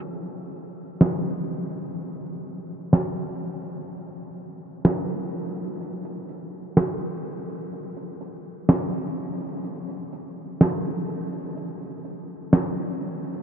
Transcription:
\new DrumStaff \with { instrumentName = "Drums" } \drummode { \time 4/4 \tempo 4 = 125 r4 r4 sn4 r4 | r4 r4 sn4 r4 | r4 r4 sn4 r4 | hh8 hh8 hh4 sn4 hh8 hh8 |
hh8 hh8 hh4 <hh sn>4 \tuplet 3/2 { hh16 r16 r16 hh16 hh16 hh16 } | hh8 hh8 hh4 <hh sn>4 \tuplet 3/2 { hh16 r16 r16 hh16 hh16 hh16 } | hh8 hh8 hh4 <hh sn>4 \tuplet 3/2 { hh16 r16 r16 hh16 hh16 r16 } | }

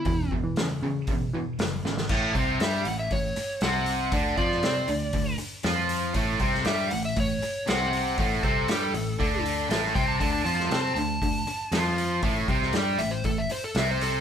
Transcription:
<<
  \new Staff \with { instrumentName = "Electric slide guitar" } { \time 4/4 \key d \major \tempo 4 = 118 e'8 r2. r8 | r4 e''8 fis''16 e''16 cis''4 fis''4~ | fis''8 d''2 r4. | r4 e''8 fis''16 e''16 cis''4 fis''4~ |
fis''8 a'2 r4 g''16 a''16 | a''16 a''16 a''16 a''16 a''16 a''16 a''2 r8 | r4. e''16 c''16 a'16 e''16 c''16 a'16 e''16 c''16 a'8 | }
  \new Staff \with { instrumentName = "Distorted electric guitar" } { \clef bass \time 4/4 \key d \major <e, b,>8 <e, b,>8 <e, cis>8 <e, cis>8 <e, b,>8 <e, b,>8 <e, cis>8 <e, cis>8 | <a, a>8 <c c'>8 <g g'>8 a,8 a,8 r8 <c c'>4 | <d d'>8 <f f'>8 <c' c''>8 d8 d8 r8 <f f'>4 | <a, a>8 <c c'>8 <g g'>8 a,8 a,8 r8 <c c'>4 |
<a, a>8 <c c'>8 <g g'>8 a,8 <d d'>4 <a, a>8 <c c'>8 | <d d'>8 <f f'>8 <c' c''>8 d8 d8 r8 <f f'>4 | <a, a>8 <c c'>8 <g g'>8 a,8 a,8 r8 <c c'>4 | }
  \new Staff \with { instrumentName = "Picked electric bass" } { \clef bass \time 4/4 \key d \major e,8. e8 r16 cis4 e16 r16 fis,,8 gis,,8 | a,,8 c,8 g,8 a,,8 a,,8 r8 c,4 | d,8 f,8 c8 d,8 d,8 r8 f,4 | a,,8 c,8 g,8 a,,8 a,,8 r8 c,4 |
a,,8 c,8 g,8 a,,8 d,4 a,,8 c,8 | d,8 f,8 c8 d,8 d,8 r8 f,4 | a,,8 c,8 g,8 a,,8 a,,8 r8 c,4 | }
  \new DrumStaff \with { instrumentName = "Drums" } \drummode { \time 4/4 <hho bd>8 bd8 <hho sn>4 <hho bd>4 <hho sn>8 sn16 sn16 | <cymc bd>8 <hho bd>8 <hho sn>8 hho8 <hho bd>8 hho8 <hho sn>8 hho8 | <hho bd>8 <hho bd>16 sn16 <hho sn>8 hho8 <hho bd>8 hho8 <hho sn>8 hho8 | <hho bd>8 <hho bd>16 sn16 <hho sn>8 hho8 <hho bd>8 hho8 <hho sn>16 sn16 hho8 |
<hho bd>8 <hho bd>8 <hho sn>8 hho8 <hho bd>8 hho8 <hho sn>16 sn16 <hho bd>8 | <hho bd>8 hho16 sn16 <hho sn>8 hho8 <hho bd>8 hho8 <hho sn>16 sn16 hho8 | <hho bd>8 <hho bd>16 sn16 <hho sn>8 hho8 <hho bd>8 hho8 <hho sn>8 hho8 | }
>>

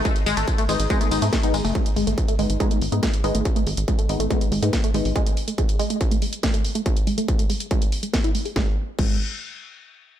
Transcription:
<<
  \new Staff \with { instrumentName = "Synth stab" } { \time 4/4 \key gis \phrygian \tempo 4 = 141 r4. <gis b dis'>8 <gis b dis'>8 <gis b dis'>16 r8 <gis b dis'>16 r8 | r4. <gis b dis'>8 <gis b dis'>8 r16 <gis b dis'>8 r16 <gis b dis'>8 | r4. <gis b dis'>8 <gis b dis'>8 r16 <gis b dis'>8 r16 <gis b dis'>8 | r1 |
r1 | r1 | }
  \new Staff \with { instrumentName = "Synth arpeggio sound" } { \clef bass \time 4/4 \key gis \phrygian gis16 r16 gis16 a16 r16 a16 gis16 r16 gis16 a16 r16 a16 gis16 r16 gis16 a16 | gis16 r16 gis16 a16 r16 a16 gis16 r16 gis16 a16 r16 a16 gis16 r16 gis16 a16 | r16 a16 gis16 r16 gis16 a16 r16 a16 gis16 r16 gis16 a16 r16 a16 gis16 r16 | gis16 a16 r16 a16 gis16 r16 gis16 a16 r16 a16 gis16 r16 gis16 a16 r16 a16 |
gis16 r16 gis16 a16 r16 a16 gis16 r16 gis16 a16 r16 gis16 b16 e'16 a16 gis'16 | gis16 r8. gis8 r2 r8 | }
  \new Staff \with { instrumentName = "Analog synth bass" } { \clef bass \time 4/4 \key gis \phrygian r8 gis,,16 gis,,16 r8 gis,,16 gis,,16 r8 gis,,16 gis,16 r8 gis,,16 fis,,16 | r8 gis,,16 gis,,16 r8 gis,,16 gis,,16 r8 gis,,16 gis,16 r8 gis,,16 gis,,16 | r8 gis,,16 gis,,16 r8 gis,,16 gis,,16 r8 gis,,16 gis,16 r8 gis,,16 gis,,16 | r1 |
r1 | gis,,16 r8. gis,,8 r2 r8 | }
  \new DrumStaff \with { instrumentName = "Drums" } \drummode { \time 4/4 <hh bd cymr tamb>16 <hh tamb>16 <hho cymr tamb>16 <hh tamb>16 <hh bd cymr tamb>16 <hh tamb>16 <hho cymr tamb>16 <hh tamb>16 <hh bd cymr tamb>16 <hh tamb>16 <hho cymr tamb>16 <hh tamb>16 <hh bd cymr sn tamb>16 <hh tamb>16 <hho cymr tamb>16 <hho tamb>16 | <hh bd>16 hh16 hho16 hh16 <hh bd>16 hh16 hho16 hh16 <hh bd>16 hh16 hho16 hh16 <hh bd sn>16 hh16 hho16 hh16 | <hh bd>16 hh16 hho16 hh16 <hh bd>16 hh16 hho16 hh16 <hh bd>16 hh16 hho16 hh16 <hh bd sn>16 hh16 hho16 hho16 | <hh bd>16 hh16 hho16 hh16 <hh bd>16 hh16 hho16 hh16 <hh bd>16 hh16 hho16 hh16 <hh bd sn>16 hh16 hho16 hh16 |
<hh bd>16 hh16 hho16 hh16 <hh bd>16 hh16 hho16 hh16 <hh bd>16 hh16 hho16 hh16 <hh bd sn>16 hh16 hho16 hho16 | <bd sn>4 <cymc bd>4 r4 r4 | }
>>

